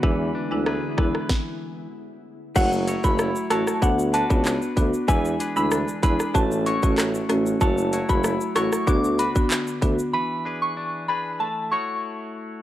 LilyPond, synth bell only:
\new Staff \with { instrumentName = "Synth bell" } { \time 4/4 \key fis \minor \tempo 4 = 95 r1 | fis''16 r8 b''16 r8 a''16 r16 fis''16 r16 a''16 r4 r16 | gis''16 r8 b''16 r8 b''16 r16 a''16 r16 cis'''16 r4 r16 | a''16 r8 b''16 r8 cis'''16 r16 d'''16 r16 b''16 r4 r16 |
b''16 r8 cis'''16 r8 b''16 r16 a''16 r16 cis'''16 r4 r16 | }